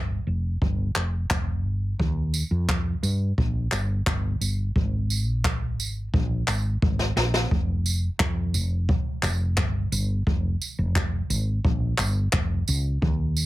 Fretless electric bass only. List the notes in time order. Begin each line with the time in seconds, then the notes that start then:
Already playing: G1
0.27 F1
0.62 G1
0.96 F1
1.30 F1
1.64 G1
1.99 D#2
2.51 F2
3.03 G2
3.38 A#1
3.72 G1
4.07 G1
4.41 G1
4.76 G#1
5.27 A#1
5.79 G#1
6.14 A#1
6.48 G#1
6.82 G#1
7.16 A#1
7.51 F1
8.20 F2
8.54 F1
9.23 F1
9.58 G1
9.92 G1
10.27 F1
10.79 F1
11.30 G#1
11.65 A#1
11.99 G1
12.33 F1
12.68 C#2
13.02 D#2